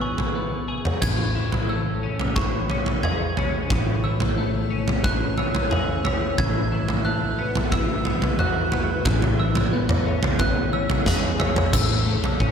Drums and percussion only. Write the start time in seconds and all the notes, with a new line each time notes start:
0.18 floor tom
0.85 mid tom
1.02 kick, floor tom, crash
1.52 floor tom
2.19 floor tom
2.36 kick, floor tom
2.70 floor tom
2.86 floor tom
3.03 mid tom
3.37 floor tom
3.70 kick, floor tom
4.20 floor tom
4.88 floor tom
5.04 kick, floor tom
5.38 floor tom
5.55 floor tom
5.71 mid tom
6.05 floor tom
6.38 kick, floor tom
6.88 floor tom
7.55 floor tom
7.72 kick, floor tom
8.05 floor tom
8.22 floor tom
8.39 mid tom
8.72 floor tom
9.05 kick, floor tom
9.22 floor tom
9.55 floor tom
9.89 mid tom
10.23 floor tom
10.39 kick, floor tom
10.90 floor tom
11.06 kick, snare, mid tom
11.40 floor tom, mid tom
11.56 floor tom, mid tom
11.73 kick, floor tom, crash
12.24 floor tom
12.40 kick